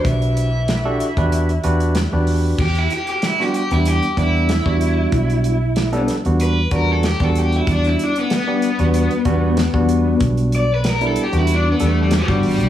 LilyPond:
<<
  \new Staff \with { instrumentName = "Overdriven electric guitar" } { \time 4/4 \key e \minor \tempo 4 = 94 e''2.~ e''8 r8 | g'16 e'16 g'16 g'16 e'16 g'16 g'16 e'16 g'8 e'4.~ | e'4. r8 b'8 ais'16 a'16 g'16 a'16 g'16 e'16 | d'16 e'16 d'16 b16 b2. |
r8 d''16 b'16 ais'16 a'16 g'16 e'16 d'16 b16 a16 g16 g4 | }
  \new Staff \with { instrumentName = "Tine electric piano" } { \time 4/4 \key e \minor <d' fis' g' b'>8. r8 <d' fis' g' a'>16 r16 <d' fis' g' b'>8 r16 <d' fis' g' b'>8 r16 <d' fis' g' b'>8. | r4 r16 <g b d' fis'>16 r16 <g b d' g'>8 r16 <g b d' g'>8 r16 <g b d' fis'>8.~ | <g b d' fis'>8. r8 <g b d' a'>16 r16 <g b d' fis'>8 r16 <g b d' fis'>8 r16 <g b d' fis'>8.~ | <g b d' fis'>8. r8 <g b d' g'>16 r16 <g b d' fis'>8 r16 <g b d' fis'>8 r16 <g b d' fis'>8.~ |
<g b d' fis'>8. r8 <g b d' e'>16 r16 <g b d' fis'>8 r16 <g b d' a'>8 r16 <g b d' fis'>8. | }
  \new Staff \with { instrumentName = "Horn section" } { \time 4/4 \key e \minor <e g d' e'>1 | r1 | r1 | r1 |
r1 | }
  \new Staff \with { instrumentName = "Fingered electric bass" } { \clef bass \time 4/4 \key e \minor b,,4.~ b,,16 e,8. e,8. e,8. | e,8 r4 r16 e,8 r16 e,8. e,8. | b,,4.~ b,,16 e,8. e,8. e,8. | e,8 r4 r16 e,8 r16 e,8. e,8. |
b,,4.~ b,,16 e,8. e,8. g,,16 a,,16 b,,16 | }
  \new DrumStaff \with { instrumentName = "Drums" } \drummode { \time 4/4 <hh bd>16 hh16 hh8 <hh sn>8 hh16 <hh bd>16 hh16 hh16 hh16 hh16 <hh sn>8 hho8 | <cymc bd>16 hh16 hh16 hh16 <hh sn>16 sn16 hh16 hh16 hh16 hh16 <hh bd>8 <hh sn>16 bd16 hh8 | <hh bd>16 hh16 hh8 <hh sn>16 hh16 <hh sn>16 hh16 hh8 <hh bd>8 <hh sn>16 <hh bd>16 hh16 hh16 | <hh bd>16 hh16 hh16 hh16 <hh sn>8 hh16 hh16 hh16 hh16 <hh bd>8 <hh sn>16 bd16 hh8 |
<hh bd>16 hh16 hh8 <hh sn>16 hh16 hh16 hh16 hh8 hh8 <hh sn>16 <hh bd>16 hho16 hh16 | }
>>